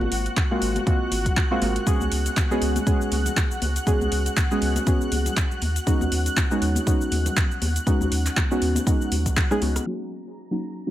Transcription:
Already playing: synth stab G#3 A#3 C4 F4 F#4, analog synth pad F#4 F#6
0.01 analog synth bass G#1, high conga
0.12 analog synth bass G#1, open hi-hat
0.26 closed hi-hat
0.37 kick, clap, closed hi-hat, high conga
0.51 synth stab G#3 A#3 C4 F4 F#4
0.62 analog synth bass G#1, open hi-hat
0.76 closed hi-hat, high conga
0.86 synth stab G#3 A#3 C4 F4 F#4, kick, closed hi-hat
1.11 analog synth bass G#1, open hi-hat, high conga
1.24 kick, closed hi-hat, low conga
1.37 kick, clap, closed hi-hat
1.51 synth stab G#3 A#3 C4 F4 F#4
1.62 analog synth bass G#1, synth stab G#3 A#3 C4 F4 F#4, open hi-hat, high conga
1.76 closed hi-hat
1.86 synth stab G#3 B3 C#4 F#4 G#4, kick, closed hi-hat, cabasa
2.01 analog synth bass C#2, high conga, cabasa
2.12 analog synth bass C#2, open hi-hat
2.26 closed hi-hat, cabasa
2.36 kick, clap, closed hi-hat, high conga, cabasa
2.51 synth stab G#3 B3 C#4 F#4 G#4, cabasa
2.62 analog synth bass C#2, open hi-hat
2.76 closed hi-hat, high conga, cabasa
2.86 synth stab G#3 B3 C#4 F#4 G#4, kick, closed hi-hat, cabasa
3.01 cabasa
3.12 analog synth bass C#2, open hi-hat, high conga
3.25 closed hi-hat, low conga, cabasa
3.37 kick, clap, closed hi-hat, cabasa
3.51 cabasa
3.62 analog synth bass C#2, open hi-hat, high conga
3.76 closed hi-hat, cabasa
3.86 synth stab G#3 B3 C#4 F#4 G#4, kick, closed hi-hat, cabasa
4.01 analog synth bass C#2, high conga, cabasa
4.12 analog synth bass C#2, open hi-hat
4.26 closed hi-hat, cabasa
4.37 kick, clap, closed hi-hat, high conga, cabasa
4.51 synth stab G#3 B3 C#4 F#4 G#4, cabasa
4.62 analog synth bass C#2, open hi-hat
4.76 closed hi-hat, high conga, cabasa
4.87 synth stab G#3 B3 C#4 F#4 G#4, kick, closed hi-hat, cabasa
5.01 cabasa
5.12 analog synth bass C#2, open hi-hat, high conga
5.26 closed hi-hat, low conga, cabasa
5.37 kick, clap, closed hi-hat, cabasa
5.51 cabasa
5.62 analog synth bass D#2, open hi-hat, high conga
5.76 closed hi-hat, cabasa
5.86 synth stab G#3 B3 C#4 D#4 F#4, kick, closed hi-hat, cabasa
6.01 analog synth bass D#2, high conga, cabasa
6.12 analog synth bass D#2, open hi-hat
6.26 closed hi-hat, cabasa
6.37 kick, clap, closed hi-hat, high conga, cabasa
6.51 synth stab G#3 B3 C#4 D#4 F#4, cabasa
6.62 analog synth bass D#2, open hi-hat
6.75 closed hi-hat, high conga, cabasa
6.87 synth stab G#3 B3 C#4 D#4 F#4, kick, closed hi-hat, cabasa
7.01 cabasa
7.11 analog synth bass D#2, open hi-hat, high conga
7.26 closed hi-hat, low conga, cabasa
7.37 kick, clap, closed hi-hat, cabasa
7.51 cabasa
7.62 analog synth bass D#2, open hi-hat, high conga
7.76 closed hi-hat, cabasa
7.87 synth stab G#3 B3 C#4 D#4 F#4, kick, closed hi-hat, cabasa
8.01 analog synth bass D#2, high conga, cabasa
8.12 analog synth bass D#2, open hi-hat
8.26 clap, closed hi-hat, cabasa
8.36 kick, clap, closed hi-hat, high conga, cabasa
8.51 synth stab G#3 B3 C#4 D#4 F#4, cabasa
8.62 analog synth bass D#2, open hi-hat
8.75 closed hi-hat, high conga, cabasa
8.86 synth stab G#3 B3 C#4 D#4 F#4, kick, closed hi-hat, cabasa
9.01 cabasa
9.12 analog synth bass D#2, open hi-hat, high conga
9.26 kick, closed hi-hat, low conga, cabasa
9.37 kick, cross-stick, clap, closed hi-hat, cabasa
9.51 synth stab G#3 B3 C#4 D#4 G#4, cross-stick, cabasa
9.62 analog synth bass C#2, synth stab G#3 B3 C#4 D#4 F#4, open hi-hat, high conga
9.76 cross-stick, closed hi-hat, cabasa
9.86 synth stab F#3 A#3 C#4 D#4 F#4, analog synth pad A#5 A#6
10.51 synth stab F#3 A#3 C#4 D#4 F#4
10.86 synth stab F#3 A#3 C#4 D#4 F#4

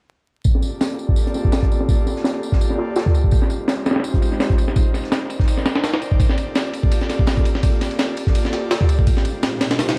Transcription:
0.44 analog synth pad A#3 F4 G4 A4 D5, kick, ride, tambourine
0.55 snare
0.62 ride, tambourine
0.73 analog synth pad A#3 F4 G4 A4 D5
0.81 snare, ride, tambourine
0.99 analog synth pad A#3 F4 G4 A4 D5, ride, tambourine
1.09 kick
1.16 ride, tambourine
1.27 snare, closed hi-hat
1.34 snare, ride, tambourine
1.45 kick
1.52 snare, ride, tambourine
1.63 kick, closed hi-hat
1.71 ride, tambourine
1.81 snare
1.89 analog synth pad A#3 F4 G4 A4 D5, kick, ride, tambourine
2.07 snare, ride, tambourine
2.16 analog synth pad A#3 F4 G4 A4 D5, snare, ride
2.24 snare, ride, tambourine
2.42 analog synth pad A#3 F4 G4 A4 D5, ride, tambourine
2.52 kick, snare
2.60 ride, tambourine
2.70 snare
2.78 snare, ride
2.96 snare, ride, tambourine
3.06 kick
3.14 ride, tambourine
3.24 kick
3.31 analog synth pad G#3 D#4 F4 G4 C5, kick, ride, tambourine
3.42 snare
3.50 ride, tambourine
3.60 analog synth pad G#3 D#4 F4 G4 C5
3.68 snare, ride, tambourine
3.86 analog synth pad G#3 D#4 F4 G4 C5, snare, ride, tambourine
3.91 snare, ride
3.96 snare, ride
4.00 snare, ride
4.04 ride, tambourine
4.14 kick, closed hi-hat
4.22 ride, tambourine
4.32 snare
4.40 snare, ride, tambourine
4.49 kick, closed hi-hat
4.58 ride, tambourine
4.68 snare
4.76 analog synth pad D#4 A#4 C5 D5 G5, kick, ride, tambourine
4.94 snare, ride, tambourine
5.04 analog synth pad D#4 A#4 C5 D5 G5, snare, ride
5.12 snare, ride, tambourine
5.30 analog synth pad D#4 A#4 C5 D5 G5, ride, tambourine
5.39 kick, snare
5.48 ride, tambourine
5.58 snare
5.66 snare, ride, tambourine
5.76 snare, ride
5.84 snare, ride, tambourine
5.93 analog synth pad D#4 A#4 C5 D5 G5, snare, ride
6.02 ride, tambourine
6.12 kick
6.20 analog synth pad A#3 F4 G4 A4 D5, kick, ride, tambourine
6.29 snare
6.38 ride, tambourine
6.47 analog synth pad A#3 F4 G4 A4 D5
6.55 snare, ride, tambourine
6.73 analog synth pad A#3 F4 G4 A4 D5, ride, tambourine
6.83 kick
6.92 ride, tambourine
7.01 snare, closed hi-hat
7.10 snare, ride, tambourine
7.19 kick
7.27 snare, ride, tambourine
7.37 kick, closed hi-hat
7.45 ride, tambourine
7.55 snare
7.63 analog synth pad A#3 F4 G4 A4 D5, kick, ride, tambourine
7.81 snare, ride, tambourine
7.91 analog synth pad A#3 F4 G4 A4 D5, snare, ride
7.99 snare, ride, tambourine
8.17 analog synth pad A#3 F4 G4 A4 D5, ride, tambourine
8.27 kick, snare
8.35 ride, tambourine
8.45 snare
8.53 snare, ride
8.71 snare, ride, tambourine
8.81 kick
8.89 ride, tambourine
8.99 kick
9.07 analog synth pad G#3 D#4 F4 G4 C5, kick, ride, tambourine, riser
9.17 snare
9.25 ride, tambourine
9.35 analog synth pad G#3 D#4 F4 G4 C5
9.43 snare, ride, tambourine
9.61 analog synth pad G#3 D#4 F4 G4 C5, snare, ride, tambourine
9.71 snare, ride
9.79 snare, ride, tambourine
9.89 snare, closed hi-hat, ride

